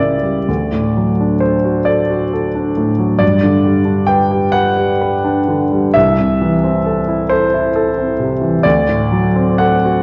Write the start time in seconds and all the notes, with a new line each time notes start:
Already playing: C#2 G3 E4 G4 A#4 D5 E5
0.00 C#3
0.23 G3
0.48 D2
0.72 A2
0.97 F#3
1.21 D4
1.40 A4 C5
1.64 F#4
1.85 A4 D5
2.10 F#4
2.33 A4
2.55 D4
2.77 A2
2.99 F#3
3.19 G2 D5
3.43 D3
3.64 G3
3.85 D4
4.07 B4 G5
4.31 G4
4.52 B4 F#5
4.77 G4
5.01 B4
5.25 D4
5.48 D3
5.72 G3
5.94 C2 E5
6.19 C3
6.41 E3
6.64 C4
6.86 A4
7.08 E4
7.29 A4 C5
7.54 E4
7.76 A4
7.98 C4
8.20 C3
8.41 E3
8.63 D2 D5
8.89 A2
9.12 F#3
9.36 C4
9.58 A4 F#5
9.85 F#4